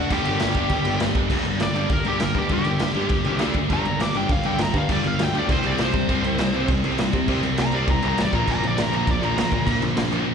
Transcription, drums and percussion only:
0.10 kick loud
0.10 crash medium
0.25 crash medium
0.40 snare loud
0.40 crash loud
0.54 kick medium
0.54 crash medium
0.69 kick loud
0.69 crash medium
0.85 crash medium
1.00 snare loud
1.00 crash medium
1.15 kick medium
1.15 crash medium
1.30 kick loud
1.30 crash loud
1.30 crash medium
1.45 crash medium
1.60 snare loud
1.60 crash medium
1.75 crash medium
1.89 kick loud
1.89 crash medium
2.04 crash medium
2.20 snare loud
2.20 crash medium
2.35 kick medium
2.35 crash medium
2.49 kick loud
2.49 crash medium
2.64 crash medium
2.79 snare loud
2.79 crash medium
2.94 crash medium
3.09 kick loud
3.09 crash medium
3.24 crash medium
3.39 snare loud
3.39 crash medium
3.54 kick medium
3.54 crash medium
3.70 kick medium
3.70 crash medium
3.85 crash medium
4.00 snare loud
4.00 crash medium
4.15 crash medium
4.29 kick loud
4.29 crash medium
4.43 crash medium
4.58 snare loud
4.58 crash medium
4.73 kick medium
4.73 crash medium
4.89 kick loud
4.89 crash medium
5.04 crash medium
5.19 snare loud
5.19 crash medium
5.34 crash medium
5.49 kick loud
5.49 crash medium
5.64 crash medium
5.78 snare loud
5.78 crash medium
5.93 kick medium
5.93 crash medium
6.09 kick loud
6.09 crash medium
6.24 crash medium
6.38 snare loud
6.38 crash medium
6.54 crash medium
6.68 kick loud
6.68 crash medium
6.84 crash medium
6.98 snare loud
6.98 crash medium
7.13 kick medium
7.13 crash medium
7.28 kick loud
7.28 crash medium
7.43 crash medium
7.57 snare loud
7.57 crash medium
7.72 crash medium
7.88 kick loud
7.88 crash medium
8.02 crash medium
8.18 snare loud
8.18 crash medium
8.33 kick medium
8.33 crash medium
8.48 kick loud
8.48 crash medium
8.63 crash medium
8.78 snare loud
8.78 crash medium
8.93 crash medium
9.07 kick loud
9.07 crash medium
9.23 crash medium
9.38 snare loud
9.38 crash medium
9.52 kick medium
9.52 crash medium
9.67 kick loud
9.67 crash medium
9.82 crash medium
9.97 snare loud
9.97 crash loud
10.12 crash medium

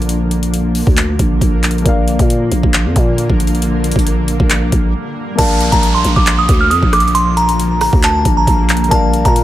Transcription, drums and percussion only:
0.02 closed hi-hat soft
0.09 closed hi-hat medium
0.31 closed hi-hat medium
0.43 closed hi-hat medium
0.54 closed hi-hat medium
0.75 open hi-hat medium
0.87 kick loud
0.97 clap loud
0.97 closed hi-hat medium
1.19 kick loud
1.19 closed hi-hat medium
1.41 kick medium
1.41 closed hi-hat medium
1.63 clap medium
1.63 closed hi-hat medium
1.63 open hi-hat medium
1.71 closed hi-hat medium
1.78 closed hi-hat soft
1.86 kick loud
1.86 closed hi-hat medium
2.08 closed hi-hat medium
2.19 kick medium
2.19 closed hi-hat medium
2.30 closed hi-hat medium
2.52 closed hi-hat medium
2.63 kick loud
2.74 clap loud
2.74 closed hi-hat medium
2.96 kick loud
2.96 closed hi-hat medium
3.18 closed hi-hat medium
3.30 kick medium
3.40 closed hi-hat medium
3.47 closed hi-hat medium
3.55 closed hi-hat soft
3.62 closed hi-hat medium
3.84 closed hi-hat medium
3.92 closed hi-hat medium
3.96 kick medium
3.96 closed hi-hat medium
4.07 closed hi-hat medium
4.28 closed hi-hat medium
4.40 kick loud
4.50 clap loud
4.50 closed hi-hat medium
4.72 kick medium
4.72 closed hi-hat medium
5.39 kick loud
5.39 closed hi-hat medium
5.39 crash loud
5.61 closed hi-hat medium
5.72 kick loud
5.72 closed hi-hat medium
5.83 closed hi-hat medium
6.04 closed hi-hat medium
6.16 kick loud
6.27 clap loud
6.27 closed hi-hat medium
6.49 kick loud
6.49 closed hi-hat medium
6.71 closed hi-hat medium
6.83 kick medium
6.93 cross-stick medium
6.93 closed hi-hat medium
7.00 closed hi-hat medium
7.08 closed hi-hat soft
7.15 closed hi-hat medium
7.37 closed hi-hat medium
7.49 closed hi-hat medium
7.59 closed hi-hat medium
7.81 cross-stick medium
7.81 open hi-hat medium
7.93 kick loud
8.03 clap loud
8.03 closed hi-hat medium
8.25 kick loud
8.25 closed hi-hat medium
8.47 kick loud
8.47 closed hi-hat medium
8.69 clap medium
8.69 closed hi-hat medium
8.69 open hi-hat medium
8.77 closed hi-hat medium
8.84 closed hi-hat soft
8.91 kick loud
8.91 closed hi-hat medium
9.13 closed hi-hat medium
9.25 kick medium
9.25 closed hi-hat medium
9.36 closed hi-hat medium

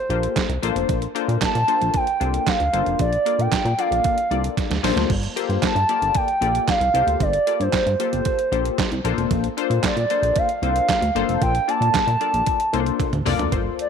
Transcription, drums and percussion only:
0.10 closed hi-hat medium
0.23 closed hi-hat medium
0.36 kick loud
0.36 snare loud
0.36 clap medium
0.36 closed hi-hat medium
0.50 closed hi-hat medium
0.63 closed hi-hat loud
0.76 closed hi-hat medium
0.89 kick loud
0.89 closed hi-hat loud
1.02 closed hi-hat medium
1.16 closed hi-hat medium
1.29 closed hi-hat soft
1.42 kick loud
1.42 snare loud
1.42 clap loud
1.42 closed hi-hat loud
1.55 closed hi-hat medium
1.68 closed hi-hat medium
1.82 closed hi-hat medium
1.94 kick loud
1.94 closed hi-hat medium
2.07 closed hi-hat medium
2.21 closed hi-hat medium
2.34 closed hi-hat medium
2.47 kick loud
2.47 snare loud
2.47 clap medium
2.47 closed hi-hat medium
2.60 closed hi-hat medium
2.74 closed hi-hat medium
2.86 closed hi-hat soft
2.99 kick loud
2.99 closed hi-hat medium
3.13 closed hi-hat medium
3.26 closed hi-hat medium
3.40 closed hi-hat medium
3.52 kick loud
3.52 snare loud
3.52 clap loud
3.52 closed hi-hat loud
3.66 closed hi-hat medium
3.79 closed hi-hat medium
3.92 closed hi-hat medium
4.04 kick loud
4.04 closed hi-hat medium
4.18 closed hi-hat medium
4.31 closed hi-hat medium
4.44 closed hi-hat medium
4.57 kick loud
4.57 snare medium
4.57 closed hi-hat medium
4.71 snare medium
4.71 closed hi-hat medium
4.84 snare loud
4.84 open hi-hat medium
4.97 snare medium
4.97 closed hi-hat soft
5.10 kick loud
5.10 crash medium
5.23 closed hi-hat soft
5.37 closed hi-hat medium
5.50 closed hi-hat soft
5.63 kick loud
5.63 snare loud
5.63 clap loud
5.63 closed hi-hat loud
5.76 closed hi-hat medium
5.89 closed hi-hat medium
6.02 closed hi-hat medium
6.15 kick loud
6.15 closed hi-hat loud
6.28 closed hi-hat medium
6.42 closed hi-hat medium
6.55 closed hi-hat medium
6.68 kick loud
6.68 snare loud
6.68 clap medium
6.68 closed hi-hat medium
6.81 closed hi-hat medium
6.95 closed hi-hat medium
7.08 closed hi-hat medium
7.20 kick loud
7.20 closed hi-hat medium
7.33 closed hi-hat medium
7.47 closed hi-hat medium
7.61 closed hi-hat soft
7.73 kick loud
7.73 snare loud
7.73 clap medium
7.73 closed hi-hat loud
7.87 closed hi-hat medium
8.00 closed hi-hat medium
8.13 closed hi-hat medium
8.25 kick loud
8.25 closed hi-hat loud
8.39 closed hi-hat medium
8.53 closed hi-hat medium
8.65 closed hi-hat medium
8.78 kick loud
8.78 snare loud
8.78 clap medium
8.78 closed hi-hat medium
8.92 closed hi-hat medium
9.05 closed hi-hat medium
9.18 closed hi-hat soft
9.31 kick loud
9.31 closed hi-hat medium
9.44 closed hi-hat medium
9.58 closed hi-hat medium
9.71 closed hi-hat soft
9.83 kick loud
9.83 snare loud
9.83 clap loud
9.83 closed hi-hat loud
9.97 closed hi-hat medium
10.10 closed hi-hat medium
10.23 closed hi-hat medium
10.36 kick loud
10.36 closed hi-hat medium
10.49 closed hi-hat medium
10.63 closed hi-hat medium
10.76 closed hi-hat medium
10.89 kick loud
10.89 snare loud
10.89 clap medium
10.89 closed hi-hat medium
11.02 closed hi-hat medium
11.16 closed hi-hat medium
11.29 closed hi-hat soft
11.42 kick loud
11.42 closed hi-hat medium
11.55 closed hi-hat medium
11.69 closed hi-hat medium
11.82 closed hi-hat soft
11.94 kick loud
11.94 snare loud
11.94 clap loud
11.94 closed hi-hat loud
12.08 closed hi-hat medium
12.21 closed hi-hat medium
12.34 closed hi-hat medium
12.46 kick loud
12.46 closed hi-hat medium
12.60 closed hi-hat medium
12.74 closed hi-hat medium
12.86 closed hi-hat medium
13.00 kick loud
13.00 closed hi-hat medium
13.00 high tom medium
13.13 closed hi-hat medium
13.13 mid tom medium
13.26 mid tom medium
13.26 open hi-hat medium
13.39 closed hi-hat soft
13.39 floor tom medium
13.52 kick loud
13.52 closed hi-hat medium
13.79 closed hi-hat medium

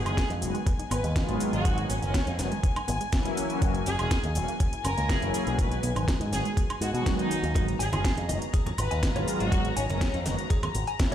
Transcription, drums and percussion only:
0.06 closed hi-hat soft
0.06 high woodblock medium
0.06 shaker soft
0.17 kick loud
0.17 snare loud
0.17 closed hi-hat medium
0.17 shaker soft
0.30 closed hi-hat soft
0.30 shaker soft
0.42 open hi-hat medium
0.42 shaker medium
0.55 closed hi-hat soft
0.55 shaker soft
0.67 kick loud
0.67 closed hi-hat medium
0.67 shaker soft
0.79 closed hi-hat soft
0.79 shaker soft
0.91 open hi-hat loud
0.91 high woodblock medium
0.91 shaker medium
1.04 closed hi-hat soft
1.04 shaker soft
1.16 kick loud
1.16 snare loud
1.16 closed hi-hat medium
1.16 shaker soft
1.29 closed hi-hat soft
1.29 shaker soft
1.40 open hi-hat loud
1.40 shaker medium
1.53 closed hi-hat soft
1.53 shaker soft
1.65 kick loud
1.65 closed hi-hat medium
1.65 shaker soft
1.78 closed hi-hat soft
1.78 shaker soft
1.90 open hi-hat loud
1.90 shaker medium
2.03 closed hi-hat soft
2.03 shaker soft
2.14 kick loud
2.14 snare loud
2.14 closed hi-hat medium
2.14 shaker soft
2.27 closed hi-hat soft
2.27 shaker soft
2.39 snare medium
2.39 open hi-hat medium
2.39 shaker medium
2.52 closed hi-hat soft
2.52 shaker soft
2.63 kick loud
2.63 closed hi-hat medium
2.63 shaker soft
2.76 closed hi-hat soft
2.76 high woodblock medium
2.76 shaker soft
2.88 open hi-hat loud
2.88 shaker medium
3.01 closed hi-hat soft
3.01 shaker soft
3.12 kick loud
3.12 snare loud
3.12 closed hi-hat medium
3.12 shaker soft
3.25 closed hi-hat soft
3.25 shaker soft
3.37 open hi-hat medium
3.37 shaker medium
3.50 closed hi-hat soft
3.50 shaker soft
3.62 kick loud
3.62 closed hi-hat medium
3.62 shaker soft
3.75 closed hi-hat soft
3.75 shaker soft
3.86 open hi-hat loud
3.86 shaker medium
3.99 closed hi-hat soft
3.99 high woodblock medium
3.99 shaker soft
4.11 kick loud
4.11 snare loud
4.11 closed hi-hat medium
4.11 shaker soft
4.24 closed hi-hat soft
4.24 shaker soft
4.35 open hi-hat medium
4.35 shaker medium
4.48 closed hi-hat soft
4.48 shaker soft
4.60 kick loud
4.60 closed hi-hat medium
4.60 shaker soft
4.73 closed hi-hat soft
4.73 shaker soft
4.85 open hi-hat loud
4.85 high woodblock medium
4.85 shaker medium
4.98 closed hi-hat soft
4.98 shaker soft
5.09 kick loud
5.09 snare loud
5.09 closed hi-hat medium
5.09 shaker soft
5.22 closed hi-hat soft
5.22 shaker soft
5.34 open hi-hat medium
5.34 shaker medium
5.47 closed hi-hat soft
5.47 shaker soft
5.59 kick loud
5.59 closed hi-hat medium
5.59 shaker soft
5.72 closed hi-hat soft
5.72 shaker soft
5.83 open hi-hat loud
5.83 shaker medium
5.96 closed hi-hat soft
5.96 high woodblock medium
5.96 shaker soft
6.08 kick loud
6.08 snare loud
6.08 closed hi-hat medium
6.08 shaker soft
6.21 closed hi-hat soft
6.21 shaker soft
6.33 snare medium
6.33 open hi-hat medium
6.33 shaker medium
6.45 closed hi-hat soft
6.45 shaker soft
6.57 kick loud
6.57 closed hi-hat medium
6.57 shaker soft
6.70 closed hi-hat soft
6.70 high woodblock medium
6.70 shaker soft
6.82 open hi-hat loud
6.82 shaker medium
6.95 closed hi-hat soft
6.95 shaker soft
7.06 kick loud
7.06 snare loud
7.06 closed hi-hat medium
7.06 shaker soft
7.19 closed hi-hat soft
7.19 shaker soft
7.31 open hi-hat medium
7.31 shaker medium
7.44 closed hi-hat soft
7.44 shaker soft
7.54 kick loud
7.54 closed hi-hat medium
7.54 high conga medium
7.54 shaker soft
7.68 closed hi-hat soft
7.68 shaker soft
7.80 open hi-hat loud
7.80 shaker medium
7.93 closed hi-hat soft
7.93 muted conga medium
7.93 high conga medium
7.93 high woodblock medium
7.93 shaker soft
8.05 kick loud
8.05 snare loud
8.05 closed hi-hat medium
8.05 shaker soft
8.18 closed hi-hat soft
8.18 shaker soft
8.29 open hi-hat medium
8.29 high conga medium
8.29 shaker medium
8.42 closed hi-hat soft
8.42 shaker soft
8.54 kick loud
8.54 closed hi-hat medium
8.54 shaker soft
8.66 closed hi-hat soft
8.66 muted conga medium
8.66 low conga medium
8.66 shaker soft
8.78 open hi-hat loud
8.78 high conga medium
8.78 high woodblock medium
8.78 shaker medium
8.91 closed hi-hat soft
8.91 shaker soft
9.03 kick loud
9.03 snare loud
9.03 closed hi-hat medium
9.03 shaker soft
9.16 closed hi-hat soft
9.16 high conga medium
9.16 low conga medium
9.16 shaker soft
9.28 open hi-hat loud
9.28 shaker medium
9.40 closed hi-hat soft
9.40 shaker soft
9.52 kick loud
9.52 closed hi-hat medium
9.52 high conga medium
9.52 shaker soft
9.65 closed hi-hat soft
9.65 shaker soft
9.77 open hi-hat loud
9.77 shaker medium
9.90 closed hi-hat soft
9.90 muted conga medium
9.90 high conga medium
9.90 shaker soft
10.01 kick loud
10.01 snare loud
10.01 closed hi-hat medium
10.01 shaker soft
10.14 closed hi-hat soft
10.14 shaker soft
10.26 snare medium
10.26 open hi-hat loud
10.26 high conga medium
10.26 shaker medium
10.38 closed hi-hat soft
10.38 shaker soft
10.50 kick loud
10.50 closed hi-hat medium
10.50 shaker soft
10.63 closed hi-hat soft
10.63 low conga loud
10.63 high woodblock medium
10.63 shaker soft
10.75 open hi-hat loud
10.75 high conga medium
10.75 shaker medium
10.87 closed hi-hat soft
10.87 shaker soft
10.99 kick loud
10.99 snare loud
10.99 closed hi-hat medium
10.99 shaker soft

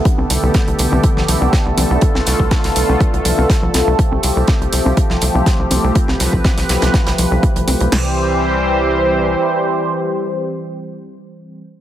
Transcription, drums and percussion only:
0.05 kick loud
0.05 closed hi-hat medium
0.18 high conga medium
0.30 closed hi-hat medium
0.30 open hi-hat loud
0.54 kick loud
0.54 snare loud
0.54 closed hi-hat medium
0.54 high conga medium
0.68 closed hi-hat soft
0.79 closed hi-hat medium
0.79 open hi-hat loud
0.92 high conga medium
1.03 kick loud
1.03 closed hi-hat medium
1.17 snare medium
1.17 low conga medium
1.28 closed hi-hat medium
1.28 open hi-hat loud
1.28 low conga medium
1.41 high conga medium
1.53 kick loud
1.53 snare loud
1.53 closed hi-hat medium
1.78 closed hi-hat medium
1.78 open hi-hat loud
1.78 high conga medium
1.78 low conga medium
2.01 kick loud
2.01 closed hi-hat medium
2.15 snare medium
2.15 high conga medium
2.26 snare soft
2.26 closed hi-hat medium
2.26 open hi-hat loud
2.40 kick medium
2.51 kick loud
2.51 snare loud
2.51 closed hi-hat medium
2.51 high conga medium
2.64 snare soft
2.64 open hi-hat medium
2.76 closed hi-hat medium
2.76 open hi-hat loud
2.89 high conga medium
3.00 kick loud
3.00 closed hi-hat medium
3.14 closed hi-hat soft
3.25 closed hi-hat medium
3.25 open hi-hat loud
3.25 low conga medium
3.38 high conga medium
3.50 kick loud
3.50 snare loud
3.50 closed hi-hat medium
3.63 low conga medium
3.74 snare medium
3.74 closed hi-hat medium
3.74 open hi-hat loud
3.74 high conga medium
3.99 kick loud
3.99 closed hi-hat medium
4.12 high conga medium
4.23 closed hi-hat medium
4.23 open hi-hat loud
4.47 kick loud
4.47 snare loud
4.47 closed hi-hat medium
4.47 high conga medium
4.62 closed hi-hat soft
4.73 closed hi-hat medium
4.73 open hi-hat medium
4.85 high conga medium
4.97 kick loud
4.97 closed hi-hat medium
5.10 snare soft
5.10 low conga medium
5.21 closed hi-hat medium
5.21 open hi-hat medium
5.21 low conga medium
5.35 high conga medium
5.46 kick loud
5.46 snare loud
5.46 closed hi-hat medium
5.71 closed hi-hat medium
5.71 open hi-hat medium
5.71 high conga medium
5.71 low conga medium
5.95 kick loud
5.95 closed hi-hat medium
6.08 snare soft
6.08 high conga medium
6.20 snare soft
6.20 closed hi-hat medium
6.20 open hi-hat loud
6.33 kick medium
6.44 kick loud
6.44 snare loud
6.44 closed hi-hat medium
6.44 high conga medium
6.58 snare soft
6.58 open hi-hat medium
6.69 snare loud
6.69 closed hi-hat medium
6.69 open hi-hat loud
6.82 snare loud
6.82 closed hi-hat medium
6.82 high conga medium
6.94 kick loud
6.94 snare medium
6.94 closed hi-hat medium
7.07 snare medium
7.07 closed hi-hat medium
7.18 closed hi-hat medium
7.18 open hi-hat medium
7.18 low conga medium
7.31 high conga medium
7.43 kick loud
7.43 closed hi-hat medium
7.56 closed hi-hat medium
7.56 low conga medium
7.68 open hi-hat medium
7.68 high conga medium
7.80 closed hi-hat medium
7.92 snare loud
7.92 crash medium

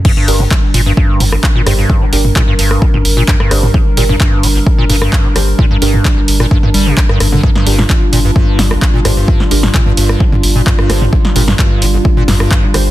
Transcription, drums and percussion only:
0.05 kick loud
0.05 crash loud
0.28 open hi-hat loud
0.40 mid tom medium
0.51 kick loud
0.51 clap loud
0.74 open hi-hat medium
0.97 kick loud
1.20 mid tom medium
1.20 open hi-hat loud
1.32 cross-stick medium
1.43 kick loud
1.43 clap loud
1.67 cross-stick medium
1.67 open hi-hat medium
1.90 kick loud
2.13 open hi-hat loud
2.25 mid tom medium
2.36 kick loud
2.36 clap loud
2.59 open hi-hat medium
2.71 cross-stick medium
2.82 kick loud
2.94 mid tom medium
3.05 open hi-hat loud
3.28 kick loud
3.28 clap loud
3.40 cross-stick medium
3.51 cross-stick medium
3.51 open hi-hat medium
3.63 mid tom medium
3.74 kick loud
3.97 open hi-hat loud
4.09 mid tom medium
4.20 kick loud
4.20 clap loud
4.43 open hi-hat medium
4.67 kick loud
4.90 mid tom medium
4.90 open hi-hat loud
5.02 cross-stick medium
5.13 kick loud
5.13 clap loud
5.36 cross-stick medium
5.36 open hi-hat medium
5.59 kick loud
5.82 open hi-hat loud
5.94 mid tom medium
6.05 kick loud
6.05 clap loud
6.28 open hi-hat loud
6.40 cross-stick medium
6.51 kick loud
6.63 mid tom medium
6.74 open hi-hat loud
6.97 kick loud
6.97 clap loud
7.09 cross-stick medium
7.20 cross-stick medium
7.20 open hi-hat loud
7.32 mid tom medium
7.43 kick loud
7.56 snare soft
7.67 open hi-hat loud
7.79 snare medium
7.79 mid tom medium
7.90 kick loud
7.90 clap loud
8.13 open hi-hat medium
8.36 kick loud
8.59 snare medium
8.59 mid tom medium
8.59 open hi-hat loud
8.71 cross-stick medium
8.82 kick loud
8.82 clap loud
9.05 cross-stick medium
9.05 open hi-hat medium
9.28 kick loud
9.40 snare soft
9.51 open hi-hat loud
9.63 snare medium
9.63 mid tom medium
9.74 kick loud
9.74 clap loud
9.97 open hi-hat medium
10.09 cross-stick medium
10.20 kick loud
10.32 mid tom loud
10.43 open hi-hat loud
10.67 kick loud
10.67 clap loud
10.79 cross-stick medium
10.90 cross-stick medium
10.90 snare soft
10.90 open hi-hat medium
11.02 mid tom loud
11.13 kick loud
11.25 snare soft
11.36 open hi-hat loud
11.48 snare medium
11.48 mid tom medium
11.59 kick loud
11.59 clap loud
11.82 open hi-hat medium
12.05 kick loud
12.28 snare medium
12.28 mid tom medium
12.28 open hi-hat loud
12.40 cross-stick medium
12.51 kick loud
12.51 clap loud
12.74 cross-stick medium
12.74 open hi-hat medium

